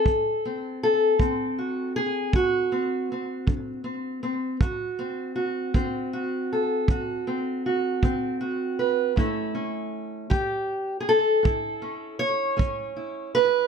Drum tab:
BD |o--o--o--o--|o--o--o--o--|o--o--o--o--|